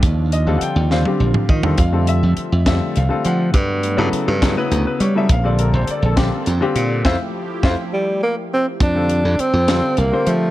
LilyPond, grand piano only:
\new Staff \with { instrumentName = "Grand piano" } { \time 6/8 \key f \major \tempo 4. = 68 << { r8 ees''8 <ges'' g''>8 f''4 ees''8 | f''8 e''4 e''8 f''8 ges''8~ | ges''4 r4 r16 b'16 des''16 e''16 | f''16 d''16 bes'16 c''16 d''16 a'16 r4. |
<c' e' f' c'' e'' f''>8 r8 <c' e' f' c'' e'' f''>8 r4. | r2. | } \\ { r8. <d g c' f' a'>8 r16 <d g c' f' c''>16 <d g c' f' g'>8. r16 <d g c' f' a'>16 | r16 <d g c' f' a'>4 r16 <d g c' f' a'>8 r16 <d g c' f' a'>8. | r8. <des fis b e' a'>8 r16 <des fis b e' a'>16 <des fis b e' b'>8. r16 <des fis b e' a'>16 | r16 <d g c' f' a'>4 r16 <d g c' f' g'>8 r16 <d g c' f' g'>8. |
r2. | r16 <d g c' f' a'>4 r16 <d g c' f' a'>8 r16 <d g c' f' c''>8. | } >> }